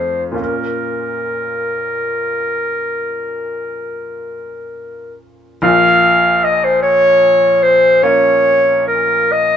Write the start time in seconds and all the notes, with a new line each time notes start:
Already playing: F2 A3 C4 F4 C5
0.32 A#2 A#3 C#4 F4
0.39 A#4
5.62 A#1 A#2 F5
6.44 D#5
6.64 C5
6.82 C#5
7.63 C5
8.03 A#3 C#4 F4 C#5
8.87 A#4
9.32 D#5